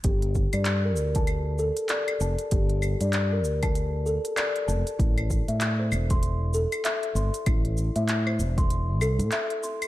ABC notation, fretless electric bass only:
X:1
M:4/4
L:1/16
Q:"Swing 16ths" 1/4=97
K:Aphr
V:1 name="Fretless electric bass" clef=bass
G,,,3 G,,3 D,,4- D,, z3 F,,, z | G,,,3 G,,3 D,,4- D,, z3 F,,, z | A,,,3 A,,3 E,,,4- E,,, z3 G,,, z | A,,,3 A,,3 E,,,4 C,, A,, z4 |]